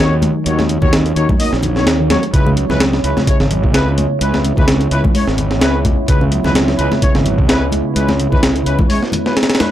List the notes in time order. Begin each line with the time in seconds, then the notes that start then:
Already playing: F#3 D#4 C#5
0.00 D#2 D#3 A#3 D#4 F#4 C#5
0.22 closed hi-hat, high conga
0.46 D#2 A#3 D#4 F#4 C#5, closed hi-hat
0.59 snare, high conga
0.69 D#3, closed hi-hat
0.82 D#2 A#3 D#4 F#4 C#5, kick, low conga
0.93 D#3, snare, closed hi-hat
1.06 closed hi-hat
1.16 D#2 A#3 D#4 F#4 C#5, closed hi-hat
1.29 F#3, kick, high conga
1.40 A#3 D#4 F#4 D#5, open hi-hat
1.53 A#1, snare
1.63 closed hi-hat, low conga
1.76 A#3 D#4 F#4 C#5, snare
1.87 D#2, snare, closed hi-hat
2.00 D#3
2.10 F#3 A#3 D#4 F#4 C#5, snare, closed hi-hat, high conga
2.23 closed hi-hat
2.33 C#2 C#3 G#3 B3 C#4 E4 B4, kick, closed hi-hat
2.46 C#3, high conga
2.57 F#3, closed hi-hat
2.70 C#2 G#3 C#4 E4 B4, snare, low conga
2.80 snare, closed hi-hat
2.93 snare
3.04 C#2 G#3 C#4 E4 B4, closed hi-hat
3.16 C#3, snare, high conga
3.27 G#3 C#4 E4 C#5, muted fingered electric bass stroke, kick, closed hi-hat
3.40 G#1 C#3, snare
3.51 F#3, closed hi-hat, low conga
3.64 C#3, kick
3.74 C#2 C#3 G#3 C#4 E4 B4, snare, closed hi-hat
3.98 closed hi-hat, high conga
4.21 C#2 G#3 C#4 E4 B4, closed hi-hat
4.34 snare, high conga
4.45 C#3, closed hi-hat
4.57 C#2 G#3 C#4 E4 B4, kick, low conga
4.68 C#3, snare, closed hi-hat
4.81 closed hi-hat
4.91 C#2 G#3 C#4 E4 B4, closed hi-hat
5.04 E3, kick, high conga
5.15 G#3 C#4 E4 C#5, open hi-hat
5.27 G#1, snare
5.38 closed hi-hat, low conga
5.51 snare
5.61 C#2 G#3 C#4 E4 B4, snare, closed hi-hat
5.85 kick, closed hi-hat, high conga
6.08 C#2 C#3 G#3 C#4 E4 B4, kick, closed hi-hat
6.21 C#3, high conga
6.32 F#3, closed hi-hat
6.44 C#2 G#3 C#4 E4 B4, snare, low conga
6.55 snare, closed hi-hat
6.68 snare
6.79 C#2 G#3 C#4 E4 B4, closed hi-hat
6.91 C#3, snare, high conga
7.02 G#3 C#4 E4 C#5, muted fingered electric bass stroke, kick, closed hi-hat
7.15 G#1 C#3, snare
7.26 F#3, closed hi-hat, low conga
7.38 C#3, kick
7.49 C#2 C#3 G#3 C#4 E4 B4, snare, closed hi-hat
7.72 closed hi-hat, high conga
7.96 C#2 G#3 C#4 E4 B4, closed hi-hat
8.08 snare, high conga
8.19 C#3, closed hi-hat
8.32 C#2 G#3 C#4 E4 B4, kick, low conga
8.43 C#3, snare, closed hi-hat
8.56 closed hi-hat
8.66 C#2 G#3 C#4 E4 B4, closed hi-hat
8.79 E3, kick, high conga
8.90 G#3 C#4 E4 C#5, open hi-hat
9.03 snare
9.12 closed hi-hat, high conga, low conga
9.26 G#3 C#4 E4 B4, snare
9.37 snare, closed hi-hat
9.43 snare, closed hi-hat
9.50 snare, closed hi-hat
9.55 snare, closed hi-hat
9.60 G#3 C#4 E4 B4, snare, closed hi-hat, high conga